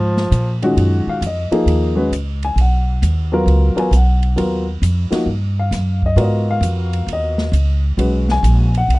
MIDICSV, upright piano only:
0, 0, Header, 1, 2, 480
1, 0, Start_track
1, 0, Tempo, 451128
1, 817, Time_signature, 4, 2, 24, 8
1, 9566, End_track
2, 0, Start_track
2, 0, Title_t, "Upright piano"
2, 0, Program_c, 0, 0
2, 662, Note_on_c, 0, 51, 62
2, 663, Note_on_c, 0, 46, 65
2, 672, Note_on_c, 0, 56, 65
2, 672, Note_on_c, 0, 61, 68
2, 674, Note_on_c, 0, 66, 81
2, 1164, Note_on_c, 0, 77, 79
2, 1267, Note_off_c, 0, 51, 0
2, 1268, Note_off_c, 0, 46, 0
2, 1272, Note_off_c, 0, 56, 0
2, 1272, Note_off_c, 0, 61, 0
2, 1274, Note_off_c, 0, 66, 0
2, 1307, Note_off_c, 0, 77, 0
2, 1346, Note_on_c, 0, 75, 66
2, 1611, Note_on_c, 0, 53, 75
2, 1616, Note_on_c, 0, 58, 66
2, 1618, Note_on_c, 0, 63, 61
2, 1623, Note_on_c, 0, 68, 75
2, 2061, Note_off_c, 0, 53, 0
2, 2063, Note_off_c, 0, 58, 0
2, 2064, Note_off_c, 0, 63, 0
2, 2067, Note_off_c, 0, 68, 0
2, 2077, Note_off_c, 0, 75, 0
2, 2081, Note_on_c, 0, 56, 61
2, 2089, Note_on_c, 0, 61, 57
2, 2092, Note_on_c, 0, 66, 51
2, 2098, Note_on_c, 0, 71, 71
2, 2233, Note_off_c, 0, 56, 0
2, 2237, Note_off_c, 0, 61, 0
2, 2238, Note_off_c, 0, 66, 0
2, 2241, Note_off_c, 0, 71, 0
2, 2602, Note_on_c, 0, 80, 81
2, 2745, Note_off_c, 0, 80, 0
2, 2780, Note_on_c, 0, 78, 65
2, 3514, Note_off_c, 0, 78, 0
2, 3531, Note_on_c, 0, 54, 66
2, 3536, Note_on_c, 0, 59, 66
2, 3543, Note_on_c, 0, 65, 67
2, 3549, Note_on_c, 0, 70, 80
2, 3981, Note_off_c, 0, 54, 0
2, 3983, Note_off_c, 0, 59, 0
2, 3987, Note_off_c, 0, 65, 0
2, 3990, Note_off_c, 0, 70, 0
2, 3998, Note_on_c, 0, 54, 69
2, 4004, Note_on_c, 0, 59, 59
2, 4004, Note_on_c, 0, 65, 57
2, 4011, Note_on_c, 0, 70, 68
2, 4036, Note_on_c, 0, 80, 74
2, 4151, Note_off_c, 0, 54, 0
2, 4154, Note_off_c, 0, 59, 0
2, 4154, Note_off_c, 0, 65, 0
2, 4157, Note_off_c, 0, 70, 0
2, 4182, Note_off_c, 0, 80, 0
2, 4221, Note_on_c, 0, 78, 62
2, 4639, Note_on_c, 0, 54, 57
2, 4642, Note_on_c, 0, 59, 50
2, 4655, Note_on_c, 0, 65, 53
2, 4655, Note_on_c, 0, 70, 65
2, 4934, Note_off_c, 0, 54, 0
2, 4936, Note_off_c, 0, 59, 0
2, 4942, Note_off_c, 0, 65, 0
2, 4942, Note_off_c, 0, 70, 0
2, 4954, Note_off_c, 0, 78, 0
2, 5431, Note_on_c, 0, 53, 61
2, 5442, Note_on_c, 0, 58, 56
2, 5445, Note_on_c, 0, 63, 57
2, 5451, Note_on_c, 0, 66, 62
2, 5588, Note_off_c, 0, 53, 0
2, 5593, Note_off_c, 0, 58, 0
2, 5595, Note_off_c, 0, 63, 0
2, 5597, Note_off_c, 0, 66, 0
2, 5953, Note_on_c, 0, 77, 76
2, 6391, Note_off_c, 0, 77, 0
2, 6446, Note_on_c, 0, 75, 76
2, 6558, Note_on_c, 0, 59, 49
2, 6558, Note_on_c, 0, 66, 53
2, 6566, Note_on_c, 0, 65, 58
2, 6568, Note_on_c, 0, 70, 64
2, 6587, Note_off_c, 0, 75, 0
2, 6591, Note_on_c, 0, 74, 44
2, 6619, Note_off_c, 0, 74, 0
2, 6634, Note_on_c, 0, 75, 63
2, 6916, Note_off_c, 0, 75, 0
2, 6922, Note_on_c, 0, 77, 89
2, 7508, Note_off_c, 0, 77, 0
2, 7584, Note_on_c, 0, 75, 78
2, 7912, Note_off_c, 0, 59, 0
2, 7912, Note_off_c, 0, 66, 0
2, 7916, Note_off_c, 0, 65, 0
2, 7917, Note_off_c, 0, 70, 0
2, 8318, Note_off_c, 0, 75, 0
2, 8485, Note_on_c, 0, 56, 50
2, 8491, Note_on_c, 0, 61, 46
2, 8492, Note_on_c, 0, 66, 53
2, 8502, Note_on_c, 0, 71, 60
2, 8846, Note_on_c, 0, 80, 98
2, 9228, Note_off_c, 0, 56, 0
2, 9231, Note_off_c, 0, 61, 0
2, 9231, Note_off_c, 0, 66, 0
2, 9236, Note_off_c, 0, 71, 0
2, 9280, Note_off_c, 0, 80, 0
2, 9338, Note_on_c, 0, 78, 80
2, 9475, Note_off_c, 0, 78, 0
2, 9517, Note_on_c, 0, 78, 79
2, 9566, Note_off_c, 0, 78, 0
2, 9566, End_track
0, 0, End_of_file